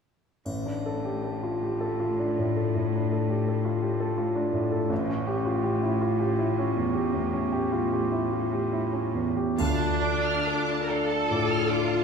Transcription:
0.45 A1 A2, triangle
0.66 D4
0.86 A4
1.05 G4
1.24 A4
1.43 F4
1.63 G4
1.80 A4
2.00 F4
2.19 D4
2.38 A2
2.57 A4
2.75 A2
2.95 D4
3.12 A4
3.30 G4
3.48 A4
3.65 F4
3.82 G4
4.00 A4
4.18 F4
4.35 D4
4.53 A2
4.72 A4
4.89 A1 A2
5.08 C#4
5.27 G4
5.45 F4
5.64 G4
5.83 E4
6.01 F4
6.20 G4
6.39 E4
6.58 C#4
6.77 E2
6.94 G4
7.14 E2
7.33 C#4
7.52 G4
7.72 F4
7.93 G4
8.12 E4
8.32 F4
8.53 G4
8.73 E4
8.92 C#4
9.14 E2
9.37 G4
9.58 D2 A3 D4 F4 F5 A5, triangle
9.79 A5
10.01 D4 D6
10.24 F6
10.47 A4 D6
10.70 A5
10.84 A#4
10.90 D4 A4 F5
11.10 A5
11.31 A2 D6
11.50 F6
11.68 D4 F4 D6
11.87 A5

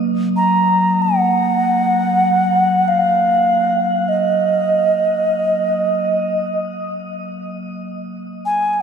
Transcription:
Already playing: F#3 A#3
0.36 A#5
1.02 F#5
2.88 F5
4.09 D#5
8.46 G#5
8.73 G#5

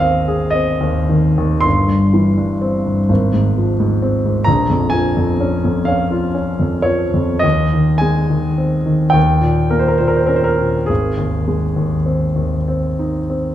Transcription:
Already playing: G#1 D#2 D#3 C4 D#5
0.00 C4 F5
0.28 G#4
0.51 C4 D#5
0.81 D#2
1.09 D#3
1.38 D#2
1.60 G1 C6
1.88 G2
2.14 E3
2.38 G2
2.62 C4
2.86 G2
3.09 G#1
3.34 G#2
3.58 F3
3.80 G#2
4.02 C4
4.25 G#2
4.44 A#1 A#5
4.70 F2
4.90 F3 G#5
5.17 F2
5.40 C#4
5.65 F2
5.85 C#4 F5
6.11 F4
6.35 C#4
6.60 F2
6.82 F3 C#5
7.14 F2
7.39 D#2 D#5
7.74 D#3
7.98 G#3 G#5
8.30 D#3
8.58 C4
8.86 D#3
9.10 D#2 G5
9.41 A#2
9.70 A#3 A#4
9.79 C5
9.88 A#4
9.98 A#2 C5
10.08 A#4
10.17 C5
10.27 C#4 A#4
10.36 C5
10.44 A#4
10.58 A#2
10.86 G#1 G#4
11.17 D#2
11.48 G#3
11.76 D#2
12.06 C4
12.36 D#2
12.68 C4
12.99 D#4
13.30 C4

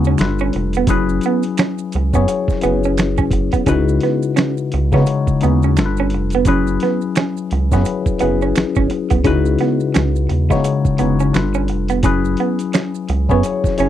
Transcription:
Already playing: D#2 C#3 G#3 D#4 E4 F#4 G#4 B4
0.04 C#4, maracas
0.18 G1 G3 D4 F4 A4 B4, finger snap, snare, closed hi-hat, maracas
0.21 finger snap
0.39 C#4, maracas
0.53 F1, muted clean electric guitar stroke, closed hi-hat
0.73 B3, closed hi-hat, maracas
0.87 F#1 F#3 C#4 E4 G#4 B4, kick, closed hi-hat, maracas
1.09 maracas
1.21 closed hi-hat, maracas
1.26 B3
1.43 closed hi-hat, maracas
1.57 finger snap, snare, closed hi-hat, maracas
1.60 C#4, finger snap
1.78 maracas
1.92 C#2, muted clean electric guitar stroke, closed hi-hat, maracas
2.14 F#2 F#3 B3 C#4 E4 G#4 C#5, kick, maracas
2.28 muted clean electric guitar stroke, closed hi-hat, maracas
2.48 kick, snare, maracas
2.61 F#1 F#3 B3 C#4 E4 G#4 B4, closed hi-hat, maracas
2.84 C#4, maracas
2.97 finger snap, snare, closed hi-hat, maracas
3.00 finger snap
3.18 C#4, kick, maracas
3.31 muted clean electric guitar stroke, kick, closed hi-hat, maracas
3.52 B3, kick, closed hi-hat, maracas
3.66 C#2 C#3 G#3 C#4 D#4 E4 F#4 B4, kick, closed hi-hat, maracas
3.89 maracas
4.00 B3, snare, closed hi-hat
4.22 maracas
4.36 C#4, finger snap, snare, closed hi-hat, maracas
4.39 finger snap
4.57 maracas
4.72 C#2, muted clean electric guitar stroke, closed hi-hat
4.92 C#3 G#3 B3 D#4 E4 F#4 C#5, kick, snare, maracas
5.06 muted clean electric guitar stroke, closed hi-hat, maracas
5.27 kick, maracas
5.41 D#2 C#3 G#3 B3 D#4 E4 F#4 G#4, closed hi-hat, maracas
5.62 C#4, maracas
5.77 G1 G3 D4 F4 A4 A#4, finger snap, snare, closed hi-hat, maracas
5.79 finger snap
5.86 B4
5.97 C#4, maracas
6.10 F1, closed hi-hat
6.14 muted clean electric guitar stroke
6.30 closed hi-hat, maracas
6.35 B3
6.45 F#1 F#3 C#4 E4 G#4 B4, kick, closed hi-hat, maracas
6.67 maracas
6.80 B3, snare, closed hi-hat
7.01 maracas
7.15 C#4, finger snap, snare, closed hi-hat, maracas
7.18 finger snap
7.37 maracas
7.51 C#2, muted clean electric guitar stroke, closed hi-hat
7.71 F#2 F#3 B3 C#4 E4 G#4 B4, kick, snare, maracas
7.85 muted clean electric guitar stroke, closed hi-hat, maracas
8.06 kick, maracas
8.19 F#1 F#3 B3 C#4 E4 G#4 B4, closed hi-hat, maracas
8.42 C#4, maracas
8.56 G#1, finger snap, snare, closed hi-hat, maracas
8.58 finger snap
8.75 G#1 C#4, kick, maracas
8.90 muted clean electric guitar stroke, closed hi-hat
9.10 C2 B3, kick, closed hi-hat, maracas
9.24 C#2 C#3 G#3 C#4 D#4 E4 F#4 B4, kick, closed hi-hat, maracas
9.45 maracas
9.59 B3, snare, closed hi-hat
9.80 maracas
9.94 C#2 C#4, finger snap, snare, closed hi-hat, maracas
10.16 maracas
10.29 E2, muted clean electric guitar stroke, closed hi-hat
10.50 C#3 G#3 B3 D#4 E4 F#4 C#5, kick, snare, maracas
10.64 muted clean electric guitar stroke, closed hi-hat, maracas
10.85 kick, maracas
10.98 F#1 C#3 G#3 B3 D#4 E4 F#4 C#5, closed hi-hat, maracas
11.20 C#4, maracas
11.33 G1 G3 D4 F4 A4 B4, finger snap, snare, closed hi-hat, maracas
11.37 finger snap
11.54 C#4, maracas
11.68 F1, muted clean electric guitar stroke, closed hi-hat
11.88 B3, closed hi-hat, maracas
12.03 F#1 F#3 C#4 E4 G#4 B4, kick, closed hi-hat, maracas
12.25 maracas
12.37 B3, closed hi-hat
12.59 closed hi-hat, maracas
12.73 C#4, finger snap, snare, closed hi-hat, maracas
12.95 maracas
13.09 C#2, muted clean electric guitar stroke, closed hi-hat
13.28 F#2 F#3 B3 C#4 E4 G#4 C#5, kick, maracas
13.43 muted clean electric guitar stroke, closed hi-hat, maracas
13.64 kick, snare, maracas
13.77 F#1 F#3 C#4 E4 G#4 C#5, closed hi-hat, maracas

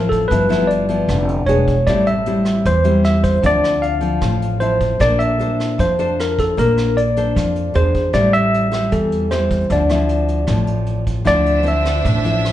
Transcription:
Already playing: A1 A2 F3 C4 E4 A#4
0.09 A4, kick, closed hi-hat
0.28 G1 G2 F3 B3 B4, kick, closed hi-hat
0.32 E4
0.49 F3 B3 E4, cross-stick, closed hi-hat
0.67 D5, closed hi-hat
0.89 F3 B3 E4, closed hi-hat
1.07 F1 D3, kick, cross-stick, closed hi-hat
1.29 closed hi-hat
1.46 E1 B3 D4 G#4 C#5, closed hi-hat
1.68 kick, closed hi-hat
1.87 A1 A2 G3 C4 E4 D5, kick, cross-stick, closed hi-hat
2.06 E5, closed hi-hat
2.26 G3 C4 E4, closed hi-hat
2.45 cross-stick, closed hi-hat
2.65 E2 E3 C5, kick, closed hi-hat
2.84 G3 C4 E4, closed hi-hat
3.04 E5, cross-stick, closed hi-hat
3.23 C5, kick, closed hi-hat
3.42 D2 D3 F3 C4 E4, kick, closed hi-hat
3.46 D5
3.64 cross-stick, closed hi-hat
3.82 F5, closed hi-hat
4.01 F3 C4, closed hi-hat
4.21 A1 A2, kick, cross-stick, closed hi-hat
4.42 closed hi-hat
4.60 F3 C4 E4 C5, closed hi-hat
4.81 kick, closed hi-hat
4.99 A#1 A#3 D4 A4 C5 D5, kick, cross-stick, closed hi-hat
5.19 E5, closed hi-hat
5.39 D4 A4 C5, closed hi-hat
5.60 cross-stick, closed hi-hat
5.78 F2 F3 C5, kick, closed hi-hat
5.99 D4 A4 C5, closed hi-hat
6.20 A#4, cross-stick, closed hi-hat
6.39 A4, kick, closed hi-hat
6.57 A#1 A#3 D4 A#4 C5, kick, closed hi-hat
6.77 cross-stick, closed hi-hat
6.97 D5, closed hi-hat
7.17 D4 A4 C5, closed hi-hat
7.35 F2 F3, kick, cross-stick, closed hi-hat
7.56 closed hi-hat
7.74 E2 D4 G#4 C5, closed hi-hat
7.94 kick, closed hi-hat
8.13 A1 A2 G3 C4 E4 D5, kick, cross-stick, closed hi-hat
8.33 E5, closed hi-hat
8.54 closed hi-hat
8.71 G3 C4 E4, cross-stick, closed hi-hat
8.92 E2 E3 A4, kick, closed hi-hat
9.12 closed hi-hat
9.31 G3 C4 E4 C5, cross-stick, closed hi-hat
9.51 kick, closed hi-hat
9.70 D2 D3 F3 C4 E4 D5, kick, closed hi-hat
9.89 F3 C4 E4, cross-stick, closed hi-hat
10.09 closed hi-hat
10.28 closed hi-hat
10.47 A1 A2 F3 C4 E4, kick, cross-stick, closed hi-hat
10.67 closed hi-hat
10.86 closed hi-hat
11.07 kick, closed hi-hat
11.25 D2 D3 F3 C4 D4 E4 C5 D5 E5, kick, cross-stick, closed hi-hat
11.46 closed hi-hat
11.63 F3 C4 E4, closed hi-hat
11.68 E5
11.85 cross-stick, closed hi-hat
12.04 A1 A2, kick, closed hi-hat
12.24 F3 C4 E4, closed hi-hat
12.45 cross-stick, closed hi-hat

